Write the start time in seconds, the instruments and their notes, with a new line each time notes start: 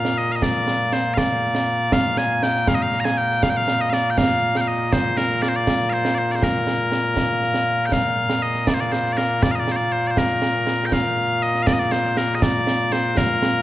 Already playing: bagpipes A#2 A#3 F4 F5
0.05 snare
0.18 bagpipes D#5
0.30 bagpipes F5, snare
0.36 bagpipes D#5
0.42 bagpipes D5, concert bass drum, snare
0.67 snare
0.93 bagpipes C5, snare
1.14 bagpipes D5 F5, concert bass drum, snare
1.55 snare
1.92 bagpipes F5, concert bass drum, snare
2.17 bagpipes G#5, snare
2.43 bagpipes G5, snare
2.56 snare
2.67 bagpipes F5, concert bass drum, snare
2.75 bagpipes D#5
2.82 bagpipes F5
2.93 snare
3.00 bagpipes A#5
3.05 bagpipes G#5, snare
3.18 bagpipes G5
3.31 snare
3.43 bagpipes F5, concert bass drum, snare
3.50 bagpipes G5
3.57 bagpipes F5
3.68 snare
3.81 bagpipes D#5
3.90 bagpipes D5 F5, snare
4.10 bagpipes G5
4.18 bagpipes F5, concert bass drum, snare
4.55 bagpipes G5, snare
4.61 bagpipes F5
4.68 bagpipes D#5
4.93 bagpipes C5, concert bass drum, snare
5.17 bagpipes A#4, snare
5.30 snare
5.42 bagpipes D5, snare
5.49 bagpipes C5
5.56 bagpipes D5
5.67 concert bass drum, snare
5.90 bagpipes C5 F5, snare
6.05 snare
6.15 bagpipes C5 D5
6.30 bagpipes D5, snare
6.35 bagpipes C5
6.43 bagpipes A#4, concert bass drum, snare
6.67 snare
6.92 snare
7.17 concert bass drum, snare
7.42 snare
7.54 snare
7.86 bagpipes G5
7.92 bagpipes F5, concert bass drum, snare
8.30 snare
8.42 bagpipes D#5
8.55 snare
8.67 bagpipes D5, concert bass drum, snare
8.74 bagpipes C5
8.80 bagpipes D5
8.86 bagpipes D5
8.92 bagpipes C5, snare
9.05 snare
9.13 bagpipes D5
9.17 bagpipes A#4, snare
9.43 bagpipes D5, concert bass drum, snare
9.51 bagpipes D#5 F5
9.60 bagpipes D5
9.67 snare
9.72 bagpipes C5
9.76 bagpipes D5
9.92 bagpipes C5
10.07 bagpipes C5 D5
10.17 bagpipes A#4, concert bass drum, snare
10.42 snare
10.67 snare
10.86 bagpipes G5
10.92 bagpipes F5, concert bass drum, snare
11.42 bagpipes D#5
11.55 snare
11.63 bagpipes F5
11.67 bagpipes D5, concert bass drum, snare
11.73 bagpipes D#5
11.79 bagpipes D5
11.92 bagpipes C5, snare
12.05 snare
12.17 bagpipes A#4, snare
12.35 bagpipes D#5
12.42 bagpipes D5, concert bass drum, snare
12.67 snare
12.92 bagpipes C5, snare
13.17 bagpipes A#4, concert bass drum, snare
13.43 snare